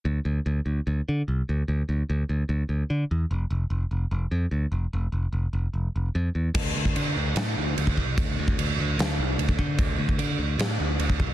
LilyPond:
<<
  \new Staff \with { instrumentName = "Picked electric bass" } { \clef bass \time 4/4 \key d \minor \tempo 4 = 148 d,8 d,8 d,8 d,8 d,8 d8 c,8 d,8 | d,8 d,8 d,8 d,8 d,8 d,8 d8 e,8 | f,,8 f,,8 f,,8 f,,8 f,,8 f,8 d,8 f,,8 | f,,8 f,,8 f,,8 f,,8 f,,8 f,,8 f,8 e,8 |
d,8 d,8 d8 d,8 a,8 d,8 d,8 c,8 | d,8 d,8 d,8 d,8 d,8 c,8 d,8 d8 | d,8 d,8 d8 d,8 a,8 d,8 d,8 c,8 | }
  \new DrumStaff \with { instrumentName = "Drums" } \drummode { \time 4/4 r4 r4 r4 r4 | r4 r4 r4 r4 | r4 r4 r4 r4 | r4 r4 r4 r4 |
<cymc bd>8. bd16 cymc4 <cymc sn>4 cymc16 bd16 bd8 | <cymc bd>8. bd16 cymc4 <cymc sn>4 cymc16 bd16 bd8 | <cymc bd>8. bd16 cymc4 <cymc sn>4 cymc16 bd16 bd8 | }
>>